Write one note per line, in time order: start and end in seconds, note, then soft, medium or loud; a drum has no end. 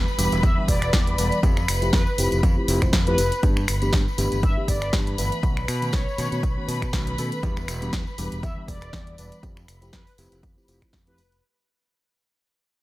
0.00 3.42 B4 medium
0.00 3.42 B5 medium
0.08 tambourine soft
0.18 0.30 E1 loud
0.18 0.39 E3 loud
0.18 0.39 G3 medium
0.18 0.39 B3 medium
0.18 0.39 D4 medium
0.18 0.39 G4 loud
0.18 open hi-hat loud
0.18 tambourine loud
0.32 0.41 E1 medium
0.32 closed hi-hat medium
0.32 tambourine soft
0.43 0.55 E2 loud
0.43 0.62 E5 loud
0.43 kick loud
0.43 closed hi-hat medium
0.43 tambourine medium
0.57 0.77 E3 medium
0.57 0.77 G3 medium
0.57 0.77 B3 medium
0.57 0.77 D4 medium
0.57 0.77 G4 loud
0.57 muted fingered electric bass stroke soft
0.68 0.90 E1 loud
0.68 1.39 D5 loud
0.68 kick medium
0.68 open hi-hat loud
0.68 tambourine medium
0.82 finger snap medium
0.82 closed hi-hat medium
0.82 tambourine soft
0.93 1.15 E2 loud
0.93 1.14 E3 medium
0.93 1.14 G3 medium
0.93 1.14 B3 medium
0.93 1.14 D4 medium
0.93 1.14 G4 loud
0.93 kick loud
0.93 snare loud
0.93 closed hi-hat medium
0.93 tambourine medium
1.07 closed hi-hat medium
1.18 1.30 E1 loud
1.18 1.39 E3 medium
1.18 1.39 G3 medium
1.18 1.39 B3 medium
1.18 1.39 D4 medium
1.18 1.39 B4 medium
1.18 open hi-hat loud
1.18 tambourine loud
1.31 closed hi-hat medium
1.31 tambourine soft
1.43 1.65 F2 loud
1.43 1.57 F3 medium
1.43 1.57 A3 medium
1.43 1.57 C4 medium
1.43 1.57 E4 medium
1.43 1.57 G4 medium
1.43 kick loud
1.43 closed hi-hat medium
1.43 tambourine medium
1.57 finger snap medium
1.57 tambourine soft
1.68 1.90 F1 loud
1.68 finger snap medium
1.68 open hi-hat loud
1.68 tambourine medium
1.82 2.02 F3 medium
1.82 2.02 A3 medium
1.82 2.02 C4 medium
1.82 2.02 E4 medium
1.82 2.02 G4 medium
1.82 closed hi-hat soft
1.82 tambourine soft
1.93 2.05 F2 medium
1.93 2.12 B4 medium
1.93 kick loud
1.93 snare loud
1.93 closed hi-hat medium
1.93 tambourine medium
2.07 tambourine soft
2.18 2.30 F1 loud
2.18 2.39 F3 medium
2.18 2.39 A3 medium
2.18 2.39 C4 medium
2.18 2.39 E4 medium
2.18 2.39 G4 loud
2.18 open hi-hat loud
2.18 tambourine medium
2.32 2.42 F1 medium
2.32 closed hi-hat medium
2.32 tambourine soft
2.43 2.55 F2 medium
2.43 kick loud
2.43 closed hi-hat medium
2.43 tambourine medium
2.57 2.66 F3 medium
2.57 2.66 A3 medium
2.57 2.66 C4 medium
2.57 2.66 E4 medium
2.57 2.66 G4 medium
2.68 2.90 F1 loud
2.68 2.79 F3 medium
2.68 2.79 A3 medium
2.68 2.79 C4 medium
2.68 2.79 E4 medium
2.68 2.79 G4 medium
2.68 open hi-hat loud
2.68 tambourine loud
2.82 2.94 F3 medium
2.82 2.94 A3 medium
2.82 2.94 E4 medium
2.82 2.94 C5 medium
2.82 finger snap medium
2.82 kick medium
2.82 closed hi-hat soft
2.82 tambourine soft
2.93 3.15 F2 loud
2.93 kick loud
2.93 snare loud
2.93 closed hi-hat medium
2.93 tambourine medium
3.07 3.18 F3 medium
3.07 3.18 A3 medium
3.07 3.19 C4 medium
3.07 3.19 E4 medium
3.07 3.19 G4 loud
3.07 3.49 B4 loud
3.07 closed hi-hat medium
3.18 3.30 F1 loud
3.18 open hi-hat loud
3.18 tambourine medium
3.32 closed hi-hat medium
3.32 tambourine soft
3.43 3.65 G2 loud
3.43 3.57 E3 medium
3.43 3.57 A3 medium
3.43 3.57 B3 medium
3.43 3.57 D4 medium
3.43 3.57 G4 medium
3.43 11.45 B4 medium
3.43 11.45 B5 medium
3.43 kick loud
3.43 closed hi-hat medium
3.43 tambourine medium
3.57 finger snap medium
3.57 tambourine soft
3.68 3.90 G1 medium
3.68 finger snap medium
3.68 open hi-hat loud
3.68 tambourine medium
3.82 4.02 E3 medium
3.82 4.02 A3 medium
3.82 4.02 B3 medium
3.82 4.02 D4 medium
3.82 4.02 G4 medium
3.82 closed hi-hat medium
3.82 tambourine soft
3.93 4.05 G2 medium
3.93 kick loud
3.93 snare loud
3.93 closed hi-hat medium
3.93 tambourine medium
4.08 tambourine soft
4.18 4.30 G1 loud
4.18 4.39 E3 medium
4.18 4.39 A3 medium
4.18 4.39 B3 medium
4.18 4.39 D4 medium
4.18 4.39 G4 loud
4.18 open hi-hat loud
4.18 tambourine medium
4.32 4.41 G1 medium
4.32 closed hi-hat medium
4.32 tambourine soft
4.43 4.55 G2 medium
4.43 4.62 E5 loud
4.43 kick loud
4.43 closed hi-hat medium
4.43 tambourine medium
4.57 4.77 E3 medium
4.57 4.77 A3 medium
4.57 4.77 B3 medium
4.57 4.77 D4 medium
4.57 4.77 G4 medium
4.68 4.90 G1 loud
4.68 4.77 D5 medium
4.68 kick medium
4.68 open hi-hat loud
4.68 tambourine medium
4.82 4.89 D5 medium
4.82 finger snap medium
4.82 closed hi-hat soft
4.82 tambourine soft
4.93 5.15 G2 loud
4.93 5.14 E3 medium
4.93 5.14 A3 medium
4.93 5.14 B3 medium
4.93 5.14 D4 medium
4.93 5.14 G4 medium
4.93 kick loud
4.93 snare loud
4.93 closed hi-hat medium
4.93 tambourine medium
5.07 closed hi-hat medium
5.18 5.30 G1 loud
5.18 5.39 E3 medium
5.18 5.39 A3 medium
5.18 5.39 B3 medium
5.18 5.39 D4 medium
5.18 5.39 B4 loud
5.18 open hi-hat loud
5.18 tambourine loud
5.32 closed hi-hat medium
5.32 tambourine soft
5.43 5.65 B1 loud
5.43 5.57 D#3 medium
5.43 5.57 A3 medium
5.43 5.57 B3 medium
5.43 5.57 C#4 medium
5.43 5.58 F#4 medium
5.43 kick loud
5.43 closed hi-hat medium
5.43 tambourine medium
5.57 finger snap medium
5.57 tambourine soft
5.68 5.90 B2 loud
5.68 finger snap medium
5.68 open hi-hat loud
5.68 tambourine medium
5.82 6.02 D#3 medium
5.82 6.02 A3 medium
5.82 6.02 B3 medium
5.82 6.02 C#4 medium
5.82 6.02 F#4 medium
5.82 closed hi-hat medium
5.82 tambourine soft
5.93 6.05 B1 medium
5.93 6.64 C#5 loud
5.93 kick loud
5.93 snare loud
5.93 closed hi-hat medium
5.93 tambourine medium
6.08 tambourine soft
6.18 6.30 B2 loud
6.18 6.39 D#3 loud
6.18 6.39 A3 medium
6.18 6.39 B3 medium
6.18 6.39 C#4 medium
6.18 6.39 F#4 loud
6.18 open hi-hat loud
6.18 tambourine medium
6.32 6.42 B2 medium
6.32 closed hi-hat medium
6.32 tambourine soft
6.43 6.55 B1 loud
6.43 kick loud
6.43 closed hi-hat medium
6.43 tambourine medium
6.57 6.77 D#3 medium
6.57 6.77 A3 medium
6.57 6.77 B3 medium
6.57 6.77 C#4 medium
6.57 6.77 F#4 medium
6.57 muted fingered electric bass stroke soft
6.68 6.90 B2 loud
6.68 open hi-hat loud
6.68 tambourine medium
6.82 finger snap medium
6.82 kick medium
6.82 closed hi-hat medium
6.82 tambourine soft
6.93 7.15 B1 loud
6.93 7.14 D#3 medium
6.93 7.14 A3 medium
6.93 7.14 B3 medium
6.93 7.14 C#4 medium
6.93 7.14 F#4 medium
6.93 kick loud
6.93 snare loud
6.93 closed hi-hat medium
6.93 tambourine medium
7.07 closed hi-hat medium
7.18 7.30 B2 loud
7.18 7.39 D#3 medium
7.18 7.39 A3 medium
7.18 7.39 B3 medium
7.18 7.39 C#4 medium
7.18 7.39 A4 loud
7.18 open hi-hat loud
7.18 tambourine medium
7.32 closed hi-hat medium
7.32 tambourine soft
7.43 7.65 E2 loud
7.43 7.57 E3 medium
7.43 7.57 G3 medium
7.43 7.57 B3 medium
7.43 7.57 D4 medium
7.43 7.57 G4 loud
7.43 kick loud
7.43 closed hi-hat medium
7.43 tambourine soft
7.56 finger snap medium
7.56 tambourine soft
7.68 7.90 E1 loud
7.68 finger snap medium
7.68 open hi-hat loud
7.68 tambourine medium
7.82 8.02 E3 medium
7.82 8.02 G3 medium
7.82 8.02 B3 medium
7.82 8.02 D4 medium
7.82 8.02 G4 medium
7.82 closed hi-hat medium
7.82 tambourine soft
7.93 8.05 E2 medium
7.93 kick loud
7.93 snare loud
7.93 closed hi-hat medium
7.93 tambourine soft
8.07 tambourine soft
8.18 8.30 E1 loud
8.18 8.39 E3 loud
8.18 8.39 G3 medium
8.18 8.39 B3 medium
8.18 8.39 D4 medium
8.18 8.39 G4 loud
8.18 open hi-hat loud
8.18 tambourine medium
8.32 8.41 E1 medium
8.32 closed hi-hat medium
8.32 tambourine soft
8.43 8.55 E2 loud
8.43 8.62 E5 loud
8.43 kick loud
8.43 closed hi-hat medium
8.43 tambourine medium
8.57 8.77 E3 medium
8.57 8.77 G3 medium
8.57 8.77 B3 medium
8.57 8.77 D4 medium
8.57 8.77 G4 loud
8.57 muted fingered electric bass stroke soft
8.68 8.90 E1 loud
8.68 9.39 D5 loud
8.68 kick medium
8.68 open hi-hat loud
8.68 tambourine medium
8.81 finger snap medium
8.81 closed hi-hat medium
8.81 tambourine soft
8.93 9.15 E2 loud
8.93 9.14 E3 medium
8.93 9.14 G3 medium
8.93 9.14 B3 medium
8.93 9.14 D4 medium
8.93 9.14 G4 loud
8.93 kick loud
8.93 snare loud
8.93 closed hi-hat medium
8.93 tambourine soft
9.07 closed hi-hat medium
9.18 9.30 E1 loud
9.18 9.39 E3 medium
9.18 9.39 G3 medium
9.18 9.39 B3 medium
9.18 9.39 D4 medium
9.18 9.39 B4 medium
9.18 open hi-hat loud
9.18 tambourine medium
9.32 closed hi-hat medium
9.32 tambourine soft
9.43 9.65 F2 loud
9.43 9.57 F3 medium
9.43 9.57 A3 medium
9.43 9.57 C4 medium
9.43 9.58 E4 medium
9.43 9.58 G4 medium
9.43 kick loud
9.43 closed hi-hat medium
9.43 tambourine medium
9.57 finger snap medium
9.57 tambourine soft
9.68 9.90 F1 loud
9.68 finger snap medium
9.68 open hi-hat loud
9.68 tambourine medium
9.82 10.02 F3 medium
9.82 10.02 A3 medium
9.82 10.02 C4 medium
9.82 10.02 E4 medium
9.82 10.02 G4 medium
9.82 closed hi-hat medium
9.82 tambourine soft
9.93 10.05 F2 medium
9.93 10.12 B4 medium
9.93 kick loud
9.93 snare loud
9.93 closed hi-hat medium
9.93 tambourine soft
10.07 open hi-hat medium
10.07 tambourine soft
10.18 10.30 F1 loud
10.18 10.39 F3 medium
10.18 10.39 A3 medium
10.18 10.39 C4 medium
10.18 10.39 E4 medium
10.18 10.39 G4 loud
10.18 open hi-hat loud
10.18 tambourine loud
10.32 10.42 F1 medium
10.32 closed hi-hat medium
10.32 tambourine soft
10.43 10.55 F2 loud
10.43 kick loud
10.43 closed hi-hat medium
10.43 tambourine soft
10.57 10.66 F3 medium
10.57 10.66 A3 medium
10.57 10.66 C4 medium
10.57 10.66 E4 medium
10.57 10.66 G4 loud
10.57 muted fingered electric bass stroke soft
10.57 tambourine soft
10.68 10.80 F1 medium
10.68 10.79 F3 medium
10.68 10.79 A3 medium
10.68 10.79 C4 medium
10.68 10.79 E4 medium
10.68 10.79 G4 medium
10.68 open hi-hat loud
10.68 tambourine medium
10.82 10.93 F3 medium
10.82 10.94 E4 medium
10.82 finger snap medium
10.82 kick medium
10.82 closed hi-hat medium
10.93 11.20 F2 loud
10.93 kick loud
10.93 snare loud
10.93 closed hi-hat medium
10.93 tambourine soft
11.07 11.18 F3 medium
11.07 11.19 A3 medium
11.07 11.19 C4 medium
11.07 11.19 E4 medium
11.07 11.19 G4 loud
11.07 11.43 B4 loud
11.07 closed hi-hat medium
11.18 11.40 F1 medium
11.18 open hi-hat loud
11.18 tambourine medium
11.32 closed hi-hat medium
11.32 tambourine soft